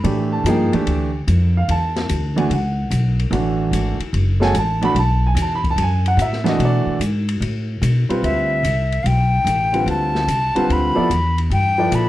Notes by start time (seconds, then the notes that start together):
Already playing: B5
0.04 A2 E3 A3 D4 G4, ride
0.32 A5
0.44 G2 F3 A#3 D#4 G#4, hi-hat pedal, ride
0.49 G5
0.72 E3 A3 D4 G4, muted upright bass stroke, ride
0.87 D2, ride
1.27 F2, hi-hat pedal, ride
1.57 F5
1.68 E2 A5, ride
1.96 snare, ride
2.09 D2, hi-hat pedal, ride
2.36 E3 A3 D4 F#4 G#5, ride
2.50 C#2 F#5, ride
2.90 B1, hi-hat pedal, ride
3.19 ride
3.31 A1 E3 A3 D4 F#4, ride
3.71 G#1, hi-hat pedal, ride
3.99 muted upright bass stroke, ride
4.13 F#1, ride
4.40 G#3 C#4 F#4 A4 G#5, snare
4.54 A1, hi-hat pedal, ride
4.58 A5
4.81 E3 A3 D4 F#4 B5, ride
4.95 B1, ride
4.99 A5
5.27 G#5
5.35 E2, hi-hat pedal, ride
5.42 A5
5.55 B5
5.64 kick, ride
5.71 A5
5.76 F#2, ride
5.82 G#5
6.06 F#5, ride
6.17 A2, hi-hat pedal, ride
6.22 E5
6.33 snare
6.44 E3 A3 D4 F#4, snare, ride
6.49 D#5
6.59 B2, ride
6.65 D5
6.86 muted upright bass stroke
6.99 G#2, hi-hat pedal, ride
7.29 ride
7.40 A2, ride
7.82 B2, hi-hat pedal, ride
8.09 G3 C4 F4 B4, muted upright bass stroke, ride
8.23 D2 E5, ride
8.63 C2, hi-hat pedal, ride
8.92 ride
9.03 B1 F5 G5, ride
9.44 A1, hi-hat pedal, ride
9.73 D3 G3 C4 F4 B4, ride
9.86 D2, ride
9.90 A5
10.15 snare
10.27 C2, hi-hat pedal, ride
10.55 D3 G3 C4 F4 B4, muted upright bass stroke, ride
10.69 D2 B5, ride
10.95 F3 B3 E4 A4 D5, muted upright bass stroke
11.10 E2, hi-hat pedal, ride
11.38 ride
11.50 G2 G5, ride
11.78 F3 E4 A4 B4 D5
11.91 A#2 B5, hi-hat pedal, ride